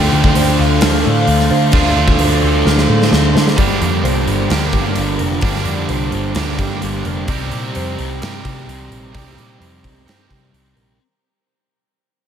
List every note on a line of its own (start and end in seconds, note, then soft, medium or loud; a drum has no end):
0.00 1.71 D3 medium
0.00 1.72 A3 medium
0.00 1.72 A3 loud
0.00 1.74 D4 loud
0.00 1.75 D4 loud
0.00 3.54 D4 medium
0.00 1.74 F4 loud
0.00 3.54 A4 medium
0.00 3.54 C5 medium
0.00 0.35 D5 loud
0.00 3.54 F5 medium
0.00 0.62 G5 loud
0.12 0.32 D2 medium
0.24 kick loud
0.35 0.56 D2 medium
0.35 0.84 C5 medium
0.35 open hi-hat medium
0.59 0.79 D2 medium
0.59 0.81 F5 loud
0.81 1.02 D2 loud
0.81 1.04 A#4 medium
0.81 3.08 F5 loud
0.81 snare loud
0.81 open hi-hat medium
1.05 1.26 A2 medium
1.05 1.51 A4 medium
1.27 1.47 D2 loud
1.27 open hi-hat medium
1.40 snare soft
1.51 1.71 D3 medium
1.51 1.73 C5 medium
1.72 1.94 D2 loud
1.72 3.56 D3 medium
1.72 3.56 A3 loud
1.72 3.57 A3 loud
1.72 3.57 D4 medium
1.72 3.58 D4 loud
1.72 3.57 F4 loud
1.72 2.19 D5 loud
1.72 kick loud
1.72 open hi-hat medium
1.96 2.17 D2 medium
2.08 kick medium
2.19 2.40 D2 medium
2.19 2.66 C5 medium
2.19 open hi-hat medium
2.43 2.63 D2 medium
2.65 2.86 D2 medium
2.65 2.88 A#4 medium
2.65 snare medium
2.78 snare medium
2.89 3.09 A2 medium
2.89 3.35 A4 medium
3.02 snare medium
3.12 3.32 D2 loud
3.12 snare loud
3.35 3.55 D3 medium
3.35 3.57 C5 medium
3.35 snare loud
3.47 snare loud
3.56 3.79 G1 medium
3.56 4.28 G2 medium
3.56 4.50 G2 medium
3.56 4.48 D3 medium
3.56 4.26 D3 medium
3.56 4.52 G3 medium
3.56 4.25 G3 medium
3.56 4.52 A#3 medium
3.56 4.52 D4 medium
3.56 7.24 F4 medium
3.56 4.53 G4 medium
3.56 7.24 A#4 medium
3.56 4.03 D5 medium
3.56 7.25 D5 medium
3.56 7.24 G5 medium
3.56 kick loud
3.56 open hi-hat medium
3.81 4.02 F2 medium
3.81 open hi-hat medium
4.03 4.25 C2 medium
4.03 4.50 C5 medium
4.03 open hi-hat medium
4.26 4.48 G1 medium
4.26 4.93 G2 medium
4.26 4.95 D3 medium
4.26 4.98 G3 medium
4.26 open hi-hat soft
4.50 4.71 D2 medium
4.50 5.41 G2 medium
4.50 5.42 D3 medium
4.50 5.43 G3 medium
4.50 5.44 A#3 medium
4.50 5.43 D4 medium
4.50 5.19 A#4 medium
4.50 snare loud
4.50 open hi-hat medium
4.54 5.45 G4 medium
4.73 4.94 G2 medium
4.73 6.59 G4 medium
4.73 kick medium
4.73 open hi-hat medium
4.94 5.18 G1 medium
4.94 5.39 G2 medium
4.94 5.41 D3 medium
4.94 5.44 G3 medium
4.94 open hi-hat medium
5.19 5.41 F1 medium
5.19 5.42 A#4 medium
5.19 open hi-hat medium
5.41 5.64 G1 medium
5.41 6.10 G2 medium
5.41 6.34 G2 medium
5.41 6.11 D3 medium
5.41 6.34 D3 medium
5.41 6.36 G3 medium
5.41 6.11 G3 medium
5.41 6.37 A#3 medium
5.41 5.89 D5 medium
5.41 kick loud
5.41 open hi-hat medium
5.45 6.35 D4 medium
5.45 6.38 G4 medium
5.55 snare soft
5.65 5.87 F2 medium
5.65 open hi-hat medium
5.89 6.10 C2 medium
5.89 6.36 C5 medium
5.89 open hi-hat medium
6.11 6.34 G1 medium
6.11 6.79 G2 medium
6.11 6.80 D3 medium
6.11 6.83 G3 medium
6.11 open hi-hat soft
6.35 6.57 D2 medium
6.35 7.27 G2 medium
6.35 7.27 D3 medium
6.35 7.29 G3 medium
6.35 7.30 A#3 medium
6.35 7.28 D4 medium
6.35 7.32 G4 medium
6.35 7.06 A#4 medium
6.35 snare loud
6.35 open hi-hat medium
6.59 6.80 G2 medium
6.59 7.06 G4 medium
6.59 kick medium
6.59 open hi-hat soft
6.80 7.03 G1 medium
6.80 7.26 G2 medium
6.80 7.25 D3 medium
6.80 7.27 G3 medium
6.80 open hi-hat medium
7.05 7.26 F1 medium
7.05 7.79 A#4 medium
7.05 open hi-hat soft
7.26 7.49 C2 medium
7.26 7.99 C3 medium
7.26 8.22 C3 medium
7.26 7.98 G3 medium
7.26 8.22 G3 medium
7.26 7.96 C4 medium
7.26 7.75 D5 medium
7.26 kick loud
7.26 open hi-hat medium
7.30 8.23 C4 medium
7.30 8.24 D#4 medium
7.30 8.24 G4 medium
7.51 7.73 A#2 medium
7.51 open hi-hat soft
7.75 7.96 F2 medium
7.75 8.25 C5 medium
7.75 open hi-hat medium
7.96 8.19 C2 medium
7.96 8.66 C3 medium
7.96 8.68 G3 medium
7.96 8.69 C4 medium
7.96 open hi-hat soft
8.22 8.43 G2 medium
8.22 9.12 C3 medium
8.22 9.13 G3 medium
8.22 9.14 C4 medium
8.22 9.14 D#4 medium
8.22 9.14 G4 medium
8.22 8.92 A#4 medium
8.22 snare loud
8.22 open hi-hat medium
8.45 8.66 C3 medium
8.45 10.29 G4 medium
8.45 kick medium
8.45 open hi-hat soft
8.67 8.88 C2 medium
8.67 9.14 C3 medium
8.67 9.15 G3 medium
8.67 9.16 C4 medium
8.67 open hi-hat medium
8.91 9.12 A#1 medium
8.91 9.14 A#4 medium
8.91 open hi-hat medium
9.12 9.35 C2 medium
9.12 10.04 C3 medium
9.12 9.82 C3 medium
9.12 10.05 G3 medium
9.12 9.83 G3 medium
9.12 10.05 C4 medium
9.12 10.05 D#4 medium
9.12 10.05 G4 medium
9.12 9.60 D5 medium
9.12 kick loud
9.12 open hi-hat medium
9.17 9.82 C4 medium
9.37 9.58 A#2 medium
9.37 open hi-hat soft
9.60 9.81 F2 medium
9.60 10.06 C5 medium
9.60 open hi-hat medium
9.83 10.05 C2 medium
9.83 10.51 C3 medium
9.83 10.52 G3 medium
9.83 10.51 C4 medium
9.83 kick medium
9.83 open hi-hat soft
10.06 10.27 G2 medium
10.06 10.97 C3 medium
10.06 10.98 G3 medium
10.06 10.98 C4 medium
10.06 10.99 D#4 medium
10.06 10.99 G4 medium
10.06 10.29 A#4 medium
10.06 snare medium
10.06 open hi-hat medium
10.29 10.51 C3 medium
10.29 10.76 G4 medium
10.29 kick medium
10.29 open hi-hat soft
10.52 10.74 C2 medium
10.52 10.97 C3 medium
10.52 10.98 G3 medium
10.52 10.99 C4 medium
10.52 open hi-hat medium
10.76 10.97 A#1 medium
10.76 10.99 A#4 medium
10.76 open hi-hat soft